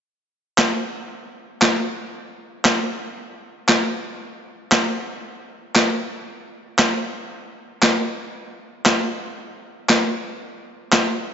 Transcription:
0.58 snare medium
0.58 clap loud
1.62 snare medium
1.62 clap loud
2.65 snare medium
2.65 clap loud
3.69 snare medium
3.69 clap loud
4.72 snare medium
4.72 clap loud
5.76 snare medium
5.76 clap loud
6.79 snare medium
6.79 clap loud
7.83 snare medium
7.83 clap loud
8.86 snare medium
8.86 clap loud
9.89 snare medium
9.89 clap loud
10.93 snare medium
10.93 clap loud

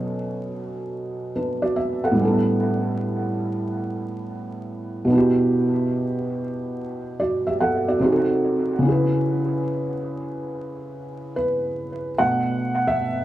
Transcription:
0.00 2.11 B2 medium
0.00 2.13 F#3 medium
0.00 1.31 C#4 medium
0.00 1.33 D4 medium
0.00 1.34 A4 medium
1.36 1.61 D4 soft
1.36 1.61 B4 medium
1.62 1.76 F#4 medium
1.62 1.76 D5 medium
1.76 2.02 E5 medium
2.04 2.23 A4 medium
2.04 2.44 F#5 medium
2.11 5.03 A2 medium
2.11 5.04 G3 medium
2.18 5.06 B3 medium
2.18 2.28 C#4 soft
2.25 5.08 D4 medium
2.25 5.09 A4 medium
5.05 7.95 B2 medium
5.05 7.97 B3 medium
5.10 7.98 D4 medium
5.10 7.99 E4 medium
5.15 7.17 F#4 medium
5.15 7.18 G4 medium
7.20 7.45 F#4 medium
7.20 7.45 D5 medium
7.47 7.60 G4 medium
7.47 7.60 E5 medium
7.60 7.87 A4 medium
7.60 7.86 F#5 medium
7.88 8.03 F#4 soft
7.88 8.27 D5 medium
7.99 8.84 C3 medium
7.99 8.85 C4 medium
7.99 8.85 D#4 medium
8.04 8.86 F#4 medium
8.04 8.12 G#4 medium
8.12 8.90 A4 medium
8.79 12.11 C#3 medium
8.79 12.13 C#4 medium
8.85 12.15 E4 medium
8.85 12.16 G#4 medium
8.92 11.35 B4 medium
11.36 12.22 B4 medium
12.19 13.24 B2 medium
12.19 13.24 A3 medium
12.19 13.24 D4 medium
12.19 12.89 F#5 loud
12.87 13.24 E5 loud

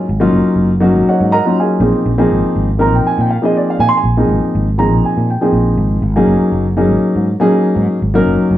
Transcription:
0.00 0.31 G#4 medium
0.00 0.31 C#5 medium
0.00 0.31 D#5 medium
0.00 0.30 G#5 medium
0.09 0.27 G#1 medium
0.20 0.69 F#3 medium
0.20 0.69 A#3 medium
0.20 0.70 C#4 medium
0.20 0.70 D#4 medium
0.20 0.70 F4 loud
0.33 0.43 F#1 medium
0.56 0.95 F#1 medium
0.80 1.30 F#3 medium
0.80 1.30 A#3 medium
0.80 1.30 C#4 medium
0.80 1.31 D#4 medium
0.80 1.08 F#4 medium
0.95 1.03 G#1 medium
1.09 1.32 F#4 medium
1.09 1.32 C#5 medium
1.09 1.31 D#5 medium
1.09 1.31 F#5 medium
1.21 1.40 G#2 medium
1.32 1.57 A#4 medium
1.32 1.56 D#5 medium
1.32 1.57 F#5 medium
1.32 1.56 A#5 loud
1.45 1.81 F#3 medium
1.45 1.79 A#3 medium
1.45 1.82 C#4 medium
1.45 1.80 D#4 medium
1.45 1.82 F4 medium
1.60 1.80 G#4 medium
1.60 2.29 D#5 medium
1.60 2.29 F5 medium
1.60 2.29 G#5 medium
1.80 1.91 A#1 loud
1.80 2.11 F3 medium
1.80 2.11 A#3 medium
1.80 2.12 C4 medium
1.80 2.12 D#4 medium
1.80 2.12 G#4 medium
2.06 2.25 A#1 medium
2.18 2.68 F3 loud
2.18 2.68 A#3 medium
2.18 2.68 C4 medium
2.18 2.68 D#4 medium
2.18 2.68 G#4 loud
2.31 2.42 G#1 medium
2.45 muted fretless electric bass stroke soft
2.56 2.94 G#1 medium
2.78 3.28 F3 medium
2.78 3.29 A#3 medium
2.78 3.29 C4 medium
2.78 3.29 D#4 medium
2.78 3.29 A#4 medium
2.78 2.94 A#5 medium
2.94 3.02 A#1 medium
2.94 3.06 G5 medium
3.05 3.20 G#5 medium
3.05 muted fretless electric bass stroke soft
3.18 3.38 A#2 medium
3.18 3.31 G5 medium
3.30 3.44 F5 medium
3.42 4.01 F3 medium
3.42 4.00 A#3 medium
3.42 4.01 C4 medium
3.42 4.01 D#4 medium
3.42 4.01 G#4 medium
3.42 3.55 D#5 medium
3.57 3.69 D5 medium
3.70 3.80 F5 medium
3.80 3.90 A#2 loud
3.80 3.88 G#5 loud
3.89 3.97 C6 loud
3.97 4.43 G#5 medium
4.04 4.23 A#1 medium
4.17 4.67 F3 medium
4.17 4.66 A#3 medium
4.17 4.67 C4 medium
4.17 4.67 D#4 medium
4.17 4.67 G#4 medium
4.29 4.39 G#1 medium
4.44 muted fretless electric bass stroke soft
4.55 4.92 G#1 medium
4.78 5.27 F3 medium
4.78 5.28 A#3 medium
4.78 5.28 C4 medium
4.78 5.28 D#4 medium
4.78 5.28 G#4 medium
4.78 5.03 A#5 medium
4.92 5.01 A#1 medium
5.05 5.29 G#5 medium
5.17 5.36 A#2 medium
5.30 5.54 G5 medium
5.41 5.99 F3 medium
5.41 5.99 A#3 medium
5.41 5.99 C4 medium
5.41 6.00 D#4 medium
5.41 5.99 G#4 medium
5.53 5.75 A#1 medium
5.77 6.00 G#1 loud
6.02 6.21 G#1 medium
6.16 6.65 F#3 medium
6.16 6.65 A#3 medium
6.16 6.65 C#4 medium
6.16 6.65 D#4 medium
6.16 6.65 G#4 loud
6.27 6.38 F#1 loud
6.41 muted fretless electric bass stroke soft
6.52 6.90 F#1 medium
6.77 7.26 F#3 medium
6.77 7.26 A#3 medium
6.77 7.26 C#4 medium
6.77 7.26 D#4 medium
6.77 7.26 G#4 medium
6.90 6.99 G#1 medium
7.02 muted fretless electric bass stroke soft
7.16 7.34 G#2 medium
7.40 7.97 F#3 medium
7.40 7.97 A#3 medium
7.40 7.98 C#4 medium
7.40 7.98 D#4 medium
7.40 7.98 G#4 loud
7.76 7.87 G#2 medium
8.02 8.20 G#1 medium
8.14 8.58 F#3 loud
8.14 8.58 A#3 medium
8.14 8.58 C#4 medium
8.14 8.58 D#4 medium
8.14 8.58 A#4 loud
8.26 8.36 F#1 loud
8.41 muted fretless electric bass stroke soft
8.51 8.58 F#1 medium

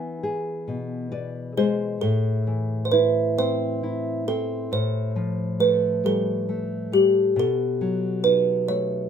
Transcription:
0.00 1.97 E3 medium
0.00 1.11 B3 soft
0.00 1.07 G#5 medium
0.23 1.97 G#4 soft
0.68 1.97 B2 soft
1.12 1.98 B4 soft
1.12 1.53 D5 medium
1.57 2.00 G#3 soft
1.57 1.77 G#4 medium
1.57 1.99 C5 medium
2.01 4.67 A2 medium
2.01 2.87 A4 medium
2.47 4.22 E3 soft
2.85 2.92 C5 soft
2.92 3.82 E4 soft
2.92 3.38 B4 medium
3.38 4.27 C4 soft
3.38 4.23 C5 medium
3.83 4.69 E4 soft
4.28 4.70 C4 soft
4.28 4.68 A4 medium
4.72 7.33 A2 medium
4.72 5.63 C5 medium
5.16 6.89 F3 soft
5.60 6.48 A3 soft
5.60 6.01 B4 medium
6.04 6.91 G3 soft
6.04 6.89 A4 medium
6.49 7.34 A3 soft
6.92 7.35 G3 soft
6.92 7.38 G4 medium
7.36 9.09 B2 medium
7.36 8.28 A4 medium
7.81 9.09 F#3 soft
8.24 9.09 D#4 medium
8.24 8.69 B4 medium
8.68 9.09 A3 soft
8.68 9.09 C#5 medium

